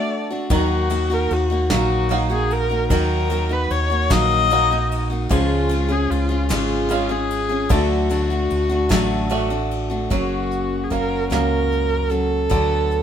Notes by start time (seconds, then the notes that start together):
Already playing: D3 A3 D4 F#4 D5
0.30 A3 D4 F#4
0.50 D#2 D#3 F#3 A#3 D#4 F#4, kick, ride
0.90 F#3 A#3 D#4 F#4, ride
1.10 A#3 D#4 F#4 A#4
1.30 D#2 F#4, ride
1.50 A#3 D#4 F#4
1.70 A#1 D#3 F#3 A#3 D#4 F#4, snare, ride
2.09 F#3 A#3 D#4 F#4, ride
2.30 A#3 D#4 F#4 G#4
2.50 A#4, ride
2.70 A#3 D#4 F#4
2.90 D#2 D#3 F#3 A#3 D#4 F#4 A#4, kick, ride
3.30 F#3 A#3 D#4 F#4, ride
3.49 A#3 D#4 F#4 B4
3.70 D#2 C#5, ride
3.90 A#3 D#4 F#4
4.10 A#1 D#3 F#3 A#3 D#4 F#4 D#5, kick, snare, ride
4.50 F#3 A#3 D#4 F#4, ride
4.71 A#3 D#4 F#4
4.91 ride
5.10 A#3 D#4 F#4
5.29 C#2 C#3 F3 G#3 C#4 F4 G#4, kick, ride
5.69 G#3 C#4 F4 G#4, ride
5.88 C#4 F4 G#4
6.10 C#2 F4, ride
6.29 C#4 F4 G#4
6.49 G#1 C#3 G#3 C#4 F4 G#4, snare, ride
6.89 G#3 C#4 F4 G#4, ride
7.09 C#4 F4 G#4
7.30 ride
7.49 C#4 F4 G#4
7.69 D2 D3 F#3 A3 D4 F#4, kick, ride
8.10 F#3 A3 D4 F#4, ride
8.30 A3 D4 F#4
8.50 D2, ride
8.70 A3 D4 F#4
8.89 A1 D3 F#3 A3 D4 F#4, kick, snare, ride
9.30 F#3 A3 D4 F#4, ride
9.50 A3 D4 F#4
9.71 ride
9.90 A3 D4 F#4
10.10 F#1 F#2 C#3 F#3 A#3 C#4 F#4, kick, closed hi-hat
10.51 closed hi-hat
10.84 G#4
10.90 F#1 F#3 A#3 C#4 F#4 A#4, kick, closed hi-hat
11.30 C#2 F#2 C#3 F#3 A#3 C#4 F#4 A#4, snare, closed hi-hat
11.72 closed hi-hat
12.10 F#3 A#3 C#4 F#4 A4, closed hi-hat
12.50 D2 D3 F#3 B3 F#4 A4, kick, closed hi-hat
12.91 closed hi-hat